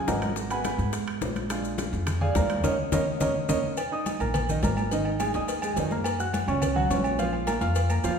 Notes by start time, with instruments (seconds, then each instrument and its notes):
0.08 upright bass G#1, grand piano A#4 D#5 F#5 A#5, high bongo, low bongo, high conga, high timbale, low timbale, maracas
0.22 high conga, high timbale, maracas
0.36 high bongo, high conga, maracas
0.50 grand piano G#3 B3 F#4 B4 F#5 G#5 B5, high bongo, high conga, high timbale, maracas
0.64 high bongo, high conga, high timbale, low timbale, maracas
0.78 upright bass G#2, high bongo, high conga, maracas
0.93 high bongo, high timbale, maracas
1.07 high conga, high timbale
1.21 upright bass A#1, high bongo, low bongo, low timbale, maracas
1.36 high bongo, high conga, high timbale, maracas
1.50 grand piano G#3 D4 F4, high bongo, high conga, high timbale, maracas
1.64 high conga, maracas
1.78 high bongo, high conga, high timbale, low timbale, maracas
1.93 upright bass F2, high conga, maracas
2.07 high bongo, high conga, low conga, high timbale, maracas
2.21 grand piano G#4 D5 F5 G#5, high conga, low conga
2.35 upright bass D#2, grand piano A#4 D5 F5 A#5, high bongo, low bongo, high conga, high timbale, low timbale, maracas
2.50 high conga, high timbale, maracas
2.64 upright bass D#2, grand piano A#4 C#5 D#5, low bongo, low conga, high timbale, maracas
2.92 upright bass D#2, grand piano A#4 C#5 D#5, low bongo, low conga, high timbale, maracas
3.20 upright bass D#2, grand piano A#4 C#5 D#5, low bongo, low conga, high timbale, maracas
3.49 upright bass D#2, grand piano A#4 C#5 D#5, low bongo, low conga, high timbale, maracas
3.77 cowbell, high conga, low agogo, maracas
3.92 grand piano D#4 D#5 D#6, high conga
4.06 cowbell, high conga, low timbale, low agogo, maracas
4.20 upright bass A#1, grand piano A#3 A#4 A#5, high conga, low agogo, maracas
4.34 cowbell, high conga, low conga, low agogo, maracas
4.49 grand piano D#3 D#4 D#5, high conga, low conga, maracas
4.63 upright bass G#1, grand piano A#3 A#4 A#5, cowbell, high conga, low timbale, low agogo, maracas
4.77 low agogo, maracas
4.91 grand piano D#3 D#4 D#5, cowbell, high conga, maracas
5.05 high conga, low agogo
5.20 grand piano G#3 G#4 G#5, cowbell, high conga, low timbale, low agogo, maracas
5.34 upright bass D#2, grand piano D#4 D#5 D#6, cowbell, high conga, maracas
5.48 cowbell, high conga, low agogo, maracas
5.62 grand piano G#3 G#4 G#5, high conga, low agogo, maracas
5.76 upright bass F#2, grand piano D#3 D#4 D#5, cowbell, high conga, low timbale, maracas
5.91 grand piano A#3 A#4 A#5, high conga, maracas
6.04 cowbell, high conga, low agogo, maracas
6.19 grand piano F#4 F#5 F#6, high conga, maracas
6.33 cowbell, high conga, low timbale, low agogo, maracas
6.47 upright bass C#2, grand piano C#4 C#5 C#6, high conga, low agogo, maracas
6.62 cowbell, high conga, low conga, low agogo, maracas
6.76 grand piano F#3 F#4 F#5, high conga, low conga
6.90 upright bass A#1, grand piano C#4 C#5 C#6, cowbell, high conga, low timbale, low agogo, maracas
7.04 high conga, low agogo, maracas
7.19 grand piano F3 F4 F5, cowbell, high conga, maracas
7.33 high conga, low agogo
7.47 grand piano A#3 A#4 A#5, cowbell, high conga, low timbale, low agogo, maracas
7.61 upright bass F2, grand piano F4 F5 F6, cowbell, high conga, maracas
7.75 cowbell, high conga, low agogo, maracas
7.90 grand piano A#3 A#4 A#5, high conga, low agogo, maracas
8.04 upright bass D#2, grand piano F3 F4 F5, cowbell, low timbale, maracas